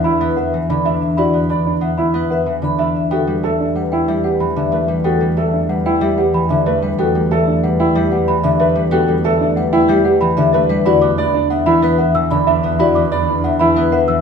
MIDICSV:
0, 0, Header, 1, 6, 480
1, 0, Start_track
1, 0, Key_signature, 1, "minor"
1, 0, Tempo, 322581
1, 1757, Time_signature, 6, 2, 24, 8
1, 21146, End_track
2, 0, Start_track
2, 0, Title_t, "Celesta"
2, 0, Program_c, 0, 8
2, 63, Note_on_c, 0, 83, 86
2, 308, Note_on_c, 0, 76, 62
2, 384, Note_off_c, 0, 83, 0
2, 545, Note_on_c, 0, 78, 65
2, 626, Note_off_c, 0, 76, 0
2, 865, Note_off_c, 0, 78, 0
2, 1264, Note_on_c, 0, 76, 66
2, 1584, Note_off_c, 0, 76, 0
2, 1745, Note_on_c, 0, 83, 70
2, 2065, Note_off_c, 0, 83, 0
2, 2702, Note_on_c, 0, 78, 65
2, 2942, Note_on_c, 0, 83, 73
2, 3024, Note_off_c, 0, 78, 0
2, 3185, Note_on_c, 0, 76, 64
2, 3263, Note_off_c, 0, 83, 0
2, 3425, Note_on_c, 0, 78, 58
2, 3505, Note_off_c, 0, 76, 0
2, 3745, Note_off_c, 0, 78, 0
2, 4143, Note_on_c, 0, 76, 66
2, 4464, Note_off_c, 0, 76, 0
2, 4627, Note_on_c, 0, 79, 64
2, 4945, Note_off_c, 0, 79, 0
2, 5592, Note_on_c, 0, 78, 58
2, 5832, Note_on_c, 0, 79, 71
2, 5907, Note_off_c, 0, 78, 0
2, 6073, Note_on_c, 0, 76, 64
2, 6147, Note_off_c, 0, 79, 0
2, 6310, Note_on_c, 0, 78, 61
2, 6388, Note_off_c, 0, 76, 0
2, 6556, Note_on_c, 0, 83, 73
2, 6627, Note_off_c, 0, 78, 0
2, 6868, Note_off_c, 0, 83, 0
2, 7034, Note_on_c, 0, 76, 65
2, 7348, Note_off_c, 0, 76, 0
2, 7504, Note_on_c, 0, 79, 68
2, 7824, Note_off_c, 0, 79, 0
2, 8471, Note_on_c, 0, 78, 70
2, 8717, Note_on_c, 0, 79, 84
2, 8787, Note_off_c, 0, 78, 0
2, 8957, Note_on_c, 0, 76, 74
2, 9029, Note_off_c, 0, 79, 0
2, 9196, Note_on_c, 0, 78, 68
2, 9269, Note_off_c, 0, 76, 0
2, 9440, Note_on_c, 0, 83, 85
2, 9508, Note_off_c, 0, 78, 0
2, 9750, Note_off_c, 0, 83, 0
2, 9918, Note_on_c, 0, 76, 75
2, 10229, Note_off_c, 0, 76, 0
2, 10397, Note_on_c, 0, 79, 70
2, 10709, Note_off_c, 0, 79, 0
2, 11360, Note_on_c, 0, 78, 66
2, 11598, Note_on_c, 0, 79, 79
2, 11670, Note_off_c, 0, 78, 0
2, 11836, Note_on_c, 0, 76, 73
2, 11909, Note_off_c, 0, 79, 0
2, 12078, Note_on_c, 0, 78, 74
2, 12148, Note_off_c, 0, 76, 0
2, 12320, Note_on_c, 0, 83, 96
2, 12389, Note_off_c, 0, 78, 0
2, 12630, Note_off_c, 0, 83, 0
2, 12790, Note_on_c, 0, 76, 77
2, 13106, Note_off_c, 0, 76, 0
2, 13275, Note_on_c, 0, 79, 85
2, 13588, Note_off_c, 0, 79, 0
2, 14229, Note_on_c, 0, 78, 73
2, 14474, Note_on_c, 0, 79, 89
2, 14546, Note_off_c, 0, 78, 0
2, 14712, Note_on_c, 0, 76, 82
2, 14788, Note_off_c, 0, 79, 0
2, 14951, Note_on_c, 0, 78, 79
2, 15027, Note_off_c, 0, 76, 0
2, 15190, Note_on_c, 0, 83, 101
2, 15267, Note_off_c, 0, 78, 0
2, 15506, Note_off_c, 0, 83, 0
2, 15667, Note_on_c, 0, 76, 86
2, 15985, Note_off_c, 0, 76, 0
2, 16151, Note_on_c, 0, 83, 81
2, 16390, Note_on_c, 0, 86, 74
2, 16467, Note_off_c, 0, 83, 0
2, 16707, Note_off_c, 0, 86, 0
2, 17114, Note_on_c, 0, 78, 77
2, 17352, Note_on_c, 0, 83, 96
2, 17428, Note_off_c, 0, 78, 0
2, 17594, Note_on_c, 0, 76, 85
2, 17667, Note_off_c, 0, 83, 0
2, 17830, Note_on_c, 0, 78, 77
2, 17908, Note_off_c, 0, 76, 0
2, 18077, Note_on_c, 0, 88, 101
2, 18147, Note_off_c, 0, 78, 0
2, 18389, Note_off_c, 0, 88, 0
2, 18556, Note_on_c, 0, 76, 81
2, 18868, Note_off_c, 0, 76, 0
2, 19034, Note_on_c, 0, 83, 84
2, 19270, Note_on_c, 0, 86, 77
2, 19348, Note_off_c, 0, 83, 0
2, 19587, Note_off_c, 0, 86, 0
2, 19998, Note_on_c, 0, 78, 74
2, 20228, Note_on_c, 0, 83, 94
2, 20309, Note_off_c, 0, 78, 0
2, 20473, Note_on_c, 0, 76, 74
2, 20546, Note_off_c, 0, 83, 0
2, 20716, Note_on_c, 0, 78, 71
2, 20787, Note_off_c, 0, 76, 0
2, 20949, Note_on_c, 0, 88, 91
2, 21029, Note_off_c, 0, 78, 0
2, 21146, Note_off_c, 0, 88, 0
2, 21146, End_track
3, 0, Start_track
3, 0, Title_t, "Vibraphone"
3, 0, Program_c, 1, 11
3, 0, Note_on_c, 1, 76, 60
3, 151, Note_off_c, 1, 76, 0
3, 318, Note_on_c, 1, 71, 76
3, 555, Note_on_c, 1, 76, 61
3, 629, Note_off_c, 1, 71, 0
3, 868, Note_off_c, 1, 76, 0
3, 1038, Note_on_c, 1, 83, 77
3, 1349, Note_off_c, 1, 83, 0
3, 1522, Note_on_c, 1, 76, 57
3, 1755, Note_on_c, 1, 74, 72
3, 1831, Note_off_c, 1, 76, 0
3, 2068, Note_off_c, 1, 74, 0
3, 2235, Note_on_c, 1, 83, 61
3, 2548, Note_off_c, 1, 83, 0
3, 2718, Note_on_c, 1, 76, 54
3, 3029, Note_off_c, 1, 76, 0
3, 3203, Note_on_c, 1, 71, 66
3, 3450, Note_on_c, 1, 76, 62
3, 3511, Note_off_c, 1, 71, 0
3, 3753, Note_off_c, 1, 76, 0
3, 3930, Note_on_c, 1, 83, 70
3, 4233, Note_off_c, 1, 83, 0
3, 4410, Note_on_c, 1, 76, 61
3, 4649, Note_on_c, 1, 69, 67
3, 4713, Note_off_c, 1, 76, 0
3, 4953, Note_off_c, 1, 69, 0
3, 5129, Note_on_c, 1, 76, 59
3, 5433, Note_off_c, 1, 76, 0
3, 5601, Note_on_c, 1, 71, 59
3, 5910, Note_off_c, 1, 71, 0
3, 6079, Note_on_c, 1, 67, 70
3, 6310, Note_on_c, 1, 71, 61
3, 6389, Note_off_c, 1, 67, 0
3, 6626, Note_off_c, 1, 71, 0
3, 6800, Note_on_c, 1, 76, 76
3, 7110, Note_off_c, 1, 76, 0
3, 7280, Note_on_c, 1, 71, 58
3, 7511, Note_on_c, 1, 69, 77
3, 7590, Note_off_c, 1, 71, 0
3, 7827, Note_off_c, 1, 69, 0
3, 7993, Note_on_c, 1, 76, 60
3, 8307, Note_off_c, 1, 76, 0
3, 8477, Note_on_c, 1, 71, 56
3, 8789, Note_off_c, 1, 71, 0
3, 8947, Note_on_c, 1, 67, 77
3, 9196, Note_on_c, 1, 71, 65
3, 9265, Note_off_c, 1, 67, 0
3, 9509, Note_off_c, 1, 71, 0
3, 9661, Note_on_c, 1, 76, 81
3, 9983, Note_off_c, 1, 76, 0
3, 10158, Note_on_c, 1, 71, 67
3, 10394, Note_on_c, 1, 69, 80
3, 10469, Note_off_c, 1, 71, 0
3, 10708, Note_off_c, 1, 69, 0
3, 10879, Note_on_c, 1, 76, 72
3, 11189, Note_off_c, 1, 76, 0
3, 11364, Note_on_c, 1, 71, 65
3, 11671, Note_off_c, 1, 71, 0
3, 11843, Note_on_c, 1, 67, 83
3, 12085, Note_on_c, 1, 71, 75
3, 12151, Note_off_c, 1, 67, 0
3, 12392, Note_off_c, 1, 71, 0
3, 12553, Note_on_c, 1, 76, 96
3, 12867, Note_off_c, 1, 76, 0
3, 13034, Note_on_c, 1, 71, 72
3, 13277, Note_on_c, 1, 69, 81
3, 13348, Note_off_c, 1, 71, 0
3, 13589, Note_off_c, 1, 69, 0
3, 13762, Note_on_c, 1, 76, 72
3, 14071, Note_off_c, 1, 76, 0
3, 14243, Note_on_c, 1, 71, 73
3, 14551, Note_off_c, 1, 71, 0
3, 14709, Note_on_c, 1, 67, 97
3, 14963, Note_on_c, 1, 71, 71
3, 15026, Note_off_c, 1, 67, 0
3, 15271, Note_off_c, 1, 71, 0
3, 15430, Note_on_c, 1, 76, 100
3, 15746, Note_off_c, 1, 76, 0
3, 15913, Note_on_c, 1, 71, 86
3, 16162, Note_on_c, 1, 74, 98
3, 16227, Note_off_c, 1, 71, 0
3, 16471, Note_off_c, 1, 74, 0
3, 16644, Note_on_c, 1, 83, 76
3, 16951, Note_off_c, 1, 83, 0
3, 17126, Note_on_c, 1, 76, 69
3, 17432, Note_off_c, 1, 76, 0
3, 17613, Note_on_c, 1, 71, 99
3, 17840, Note_on_c, 1, 76, 83
3, 17914, Note_off_c, 1, 71, 0
3, 18150, Note_off_c, 1, 76, 0
3, 18312, Note_on_c, 1, 83, 88
3, 18627, Note_off_c, 1, 83, 0
3, 18798, Note_on_c, 1, 76, 78
3, 19049, Note_on_c, 1, 74, 94
3, 19109, Note_off_c, 1, 76, 0
3, 19353, Note_off_c, 1, 74, 0
3, 19526, Note_on_c, 1, 83, 72
3, 19832, Note_off_c, 1, 83, 0
3, 20007, Note_on_c, 1, 76, 72
3, 20313, Note_off_c, 1, 76, 0
3, 20478, Note_on_c, 1, 71, 90
3, 20717, Note_on_c, 1, 76, 82
3, 20789, Note_off_c, 1, 71, 0
3, 21029, Note_off_c, 1, 76, 0
3, 21146, End_track
4, 0, Start_track
4, 0, Title_t, "Grand piano"
4, 0, Program_c, 2, 0
4, 73, Note_on_c, 2, 64, 81
4, 387, Note_off_c, 2, 64, 0
4, 550, Note_on_c, 2, 71, 62
4, 866, Note_off_c, 2, 71, 0
4, 1033, Note_on_c, 2, 62, 61
4, 1273, Note_on_c, 2, 76, 62
4, 1347, Note_off_c, 2, 62, 0
4, 1588, Note_off_c, 2, 76, 0
4, 1758, Note_on_c, 2, 66, 67
4, 2069, Note_off_c, 2, 66, 0
4, 2241, Note_on_c, 2, 74, 64
4, 2479, Note_on_c, 2, 62, 65
4, 2550, Note_off_c, 2, 74, 0
4, 2790, Note_off_c, 2, 62, 0
4, 2953, Note_on_c, 2, 64, 78
4, 3268, Note_off_c, 2, 64, 0
4, 3432, Note_on_c, 2, 71, 65
4, 3747, Note_off_c, 2, 71, 0
4, 3917, Note_on_c, 2, 62, 56
4, 4154, Note_on_c, 2, 76, 59
4, 4229, Note_off_c, 2, 62, 0
4, 4468, Note_off_c, 2, 76, 0
4, 4643, Note_on_c, 2, 66, 66
4, 4951, Note_off_c, 2, 66, 0
4, 5116, Note_on_c, 2, 69, 78
4, 5363, Note_on_c, 2, 62, 64
4, 5429, Note_off_c, 2, 69, 0
4, 5671, Note_off_c, 2, 62, 0
4, 5845, Note_on_c, 2, 64, 83
4, 6152, Note_off_c, 2, 64, 0
4, 6319, Note_on_c, 2, 67, 64
4, 6629, Note_off_c, 2, 67, 0
4, 6797, Note_on_c, 2, 62, 58
4, 7039, Note_on_c, 2, 71, 61
4, 7109, Note_off_c, 2, 62, 0
4, 7350, Note_off_c, 2, 71, 0
4, 7521, Note_on_c, 2, 66, 62
4, 7830, Note_off_c, 2, 66, 0
4, 7995, Note_on_c, 2, 69, 67
4, 8234, Note_on_c, 2, 62, 59
4, 8308, Note_off_c, 2, 69, 0
4, 8548, Note_off_c, 2, 62, 0
4, 8720, Note_on_c, 2, 64, 86
4, 9030, Note_off_c, 2, 64, 0
4, 9197, Note_on_c, 2, 67, 65
4, 9509, Note_off_c, 2, 67, 0
4, 9675, Note_on_c, 2, 62, 63
4, 9921, Note_on_c, 2, 71, 71
4, 9988, Note_off_c, 2, 62, 0
4, 10230, Note_off_c, 2, 71, 0
4, 10403, Note_on_c, 2, 66, 65
4, 10711, Note_off_c, 2, 66, 0
4, 10885, Note_on_c, 2, 69, 84
4, 11124, Note_on_c, 2, 62, 69
4, 11192, Note_off_c, 2, 69, 0
4, 11431, Note_off_c, 2, 62, 0
4, 11605, Note_on_c, 2, 64, 91
4, 11912, Note_off_c, 2, 64, 0
4, 12086, Note_on_c, 2, 67, 69
4, 12392, Note_off_c, 2, 67, 0
4, 12564, Note_on_c, 2, 62, 76
4, 12802, Note_on_c, 2, 71, 72
4, 12871, Note_off_c, 2, 62, 0
4, 13110, Note_off_c, 2, 71, 0
4, 13281, Note_on_c, 2, 66, 71
4, 13590, Note_off_c, 2, 66, 0
4, 13763, Note_on_c, 2, 69, 87
4, 13999, Note_on_c, 2, 62, 80
4, 14071, Note_off_c, 2, 69, 0
4, 14310, Note_off_c, 2, 62, 0
4, 14475, Note_on_c, 2, 64, 104
4, 14788, Note_off_c, 2, 64, 0
4, 14955, Note_on_c, 2, 67, 75
4, 15268, Note_off_c, 2, 67, 0
4, 15441, Note_on_c, 2, 62, 79
4, 15681, Note_on_c, 2, 71, 74
4, 15750, Note_off_c, 2, 62, 0
4, 15990, Note_off_c, 2, 71, 0
4, 16162, Note_on_c, 2, 66, 83
4, 16471, Note_off_c, 2, 66, 0
4, 16640, Note_on_c, 2, 74, 93
4, 16876, Note_on_c, 2, 62, 85
4, 16950, Note_off_c, 2, 74, 0
4, 17188, Note_off_c, 2, 62, 0
4, 17356, Note_on_c, 2, 64, 100
4, 17669, Note_off_c, 2, 64, 0
4, 17847, Note_on_c, 2, 71, 68
4, 18152, Note_off_c, 2, 71, 0
4, 18325, Note_on_c, 2, 62, 76
4, 18555, Note_on_c, 2, 76, 67
4, 18632, Note_off_c, 2, 62, 0
4, 18868, Note_off_c, 2, 76, 0
4, 19038, Note_on_c, 2, 66, 77
4, 19349, Note_off_c, 2, 66, 0
4, 19518, Note_on_c, 2, 74, 86
4, 19763, Note_on_c, 2, 62, 73
4, 19829, Note_off_c, 2, 74, 0
4, 20071, Note_off_c, 2, 62, 0
4, 20246, Note_on_c, 2, 64, 97
4, 20552, Note_off_c, 2, 64, 0
4, 20720, Note_on_c, 2, 71, 74
4, 21030, Note_off_c, 2, 71, 0
4, 21146, End_track
5, 0, Start_track
5, 0, Title_t, "Harp"
5, 0, Program_c, 3, 46
5, 0, Note_on_c, 3, 50, 83
5, 0, Note_on_c, 3, 52, 69
5, 0, Note_on_c, 3, 59, 61
5, 0, Note_on_c, 3, 62, 66
5, 0, Note_on_c, 3, 64, 90
5, 291, Note_off_c, 3, 59, 0
5, 309, Note_on_c, 3, 59, 84
5, 781, Note_off_c, 3, 52, 0
5, 799, Note_on_c, 3, 52, 64
5, 1022, Note_off_c, 3, 50, 0
5, 1039, Note_on_c, 3, 50, 83
5, 1254, Note_off_c, 3, 62, 0
5, 1272, Note_on_c, 3, 62, 67
5, 1733, Note_off_c, 3, 64, 0
5, 1751, Note_on_c, 3, 64, 74
5, 1969, Note_off_c, 3, 59, 0
5, 1986, Note_on_c, 3, 59, 56
5, 2203, Note_off_c, 3, 62, 0
5, 2221, Note_on_c, 3, 62, 57
5, 2675, Note_off_c, 3, 59, 0
5, 2693, Note_on_c, 3, 59, 57
5, 3165, Note_off_c, 3, 59, 0
5, 3182, Note_on_c, 3, 59, 84
5, 3646, Note_off_c, 3, 52, 0
5, 3664, Note_on_c, 3, 52, 62
5, 3879, Note_off_c, 3, 50, 0
5, 3897, Note_on_c, 3, 50, 73
5, 4127, Note_off_c, 3, 62, 0
5, 4145, Note_on_c, 3, 62, 66
5, 4608, Note_off_c, 3, 59, 0
5, 4625, Note_on_c, 3, 59, 85
5, 4646, Note_off_c, 3, 50, 0
5, 4650, Note_off_c, 3, 52, 0
5, 4870, Note_on_c, 3, 55, 58
5, 5108, Note_on_c, 3, 57, 58
5, 5567, Note_off_c, 3, 55, 0
5, 5584, Note_on_c, 3, 55, 55
5, 6055, Note_off_c, 3, 55, 0
5, 6073, Note_on_c, 3, 55, 81
5, 6547, Note_on_c, 3, 52, 62
5, 6790, Note_on_c, 3, 50, 81
5, 7004, Note_off_c, 3, 57, 0
5, 7021, Note_on_c, 3, 57, 67
5, 7245, Note_off_c, 3, 55, 0
5, 7262, Note_on_c, 3, 55, 63
5, 7483, Note_off_c, 3, 59, 0
5, 7501, Note_on_c, 3, 59, 84
5, 7554, Note_off_c, 3, 64, 0
5, 7729, Note_off_c, 3, 55, 0
5, 7747, Note_on_c, 3, 55, 56
5, 7968, Note_off_c, 3, 57, 0
5, 7986, Note_on_c, 3, 57, 65
5, 8453, Note_off_c, 3, 55, 0
5, 8471, Note_on_c, 3, 55, 57
5, 8925, Note_off_c, 3, 55, 0
5, 8943, Note_on_c, 3, 55, 81
5, 9414, Note_off_c, 3, 52, 0
5, 9432, Note_on_c, 3, 52, 66
5, 9659, Note_off_c, 3, 50, 0
5, 9677, Note_on_c, 3, 50, 85
5, 9892, Note_off_c, 3, 57, 0
5, 9910, Note_on_c, 3, 57, 74
5, 9948, Note_off_c, 3, 62, 0
5, 10133, Note_off_c, 3, 55, 0
5, 10151, Note_on_c, 3, 55, 70
5, 10379, Note_off_c, 3, 59, 0
5, 10397, Note_on_c, 3, 59, 82
5, 10622, Note_off_c, 3, 55, 0
5, 10640, Note_on_c, 3, 55, 64
5, 10863, Note_off_c, 3, 57, 0
5, 10881, Note_on_c, 3, 57, 67
5, 11347, Note_off_c, 3, 55, 0
5, 11365, Note_on_c, 3, 55, 62
5, 11818, Note_off_c, 3, 55, 0
5, 11836, Note_on_c, 3, 55, 94
5, 12305, Note_off_c, 3, 52, 0
5, 12323, Note_on_c, 3, 52, 66
5, 12540, Note_off_c, 3, 50, 0
5, 12558, Note_on_c, 3, 50, 92
5, 12771, Note_off_c, 3, 57, 0
5, 12788, Note_on_c, 3, 57, 75
5, 13009, Note_off_c, 3, 55, 0
5, 13027, Note_on_c, 3, 55, 74
5, 13241, Note_off_c, 3, 59, 0
5, 13259, Note_on_c, 3, 59, 104
5, 13495, Note_off_c, 3, 55, 0
5, 13513, Note_on_c, 3, 55, 74
5, 13735, Note_off_c, 3, 57, 0
5, 13753, Note_on_c, 3, 57, 71
5, 14222, Note_off_c, 3, 55, 0
5, 14240, Note_on_c, 3, 55, 66
5, 14699, Note_off_c, 3, 55, 0
5, 14717, Note_on_c, 3, 55, 103
5, 15181, Note_off_c, 3, 52, 0
5, 15199, Note_on_c, 3, 52, 76
5, 15421, Note_off_c, 3, 50, 0
5, 15438, Note_on_c, 3, 50, 97
5, 15665, Note_off_c, 3, 57, 0
5, 15683, Note_on_c, 3, 57, 83
5, 15900, Note_off_c, 3, 55, 0
5, 15918, Note_on_c, 3, 55, 79
5, 16155, Note_on_c, 3, 64, 97
5, 16176, Note_off_c, 3, 55, 0
5, 16177, Note_off_c, 3, 50, 0
5, 16177, Note_off_c, 3, 52, 0
5, 16179, Note_off_c, 3, 57, 0
5, 16373, Note_off_c, 3, 59, 0
5, 16391, Note_on_c, 3, 59, 80
5, 16632, Note_on_c, 3, 62, 75
5, 17099, Note_off_c, 3, 59, 0
5, 17117, Note_on_c, 3, 59, 65
5, 17349, Note_on_c, 3, 52, 69
5, 17574, Note_off_c, 3, 59, 0
5, 17592, Note_on_c, 3, 59, 96
5, 18058, Note_off_c, 3, 52, 0
5, 18076, Note_on_c, 3, 52, 78
5, 18318, Note_on_c, 3, 50, 100
5, 18545, Note_off_c, 3, 62, 0
5, 18563, Note_on_c, 3, 62, 83
5, 18787, Note_off_c, 3, 59, 0
5, 18805, Note_on_c, 3, 59, 78
5, 19022, Note_off_c, 3, 64, 0
5, 19040, Note_on_c, 3, 64, 101
5, 19262, Note_off_c, 3, 59, 0
5, 19280, Note_on_c, 3, 59, 77
5, 19500, Note_off_c, 3, 62, 0
5, 19518, Note_on_c, 3, 62, 69
5, 19980, Note_off_c, 3, 59, 0
5, 19998, Note_on_c, 3, 59, 63
5, 20222, Note_off_c, 3, 52, 0
5, 20240, Note_on_c, 3, 52, 77
5, 20465, Note_off_c, 3, 59, 0
5, 20483, Note_on_c, 3, 59, 97
5, 20936, Note_off_c, 3, 52, 0
5, 20954, Note_on_c, 3, 52, 75
5, 21146, Note_off_c, 3, 50, 0
5, 21146, Note_off_c, 3, 52, 0
5, 21146, Note_off_c, 3, 59, 0
5, 21146, Note_off_c, 3, 62, 0
5, 21146, Note_off_c, 3, 64, 0
5, 21146, End_track
6, 0, Start_track
6, 0, Title_t, "Double bass"
6, 0, Program_c, 4, 43
6, 0, Note_on_c, 4, 40, 67
6, 4479, Note_off_c, 4, 40, 0
6, 4626, Note_on_c, 4, 40, 58
6, 15996, Note_off_c, 4, 40, 0
6, 16148, Note_on_c, 4, 40, 77
6, 21146, Note_off_c, 4, 40, 0
6, 21146, End_track
0, 0, End_of_file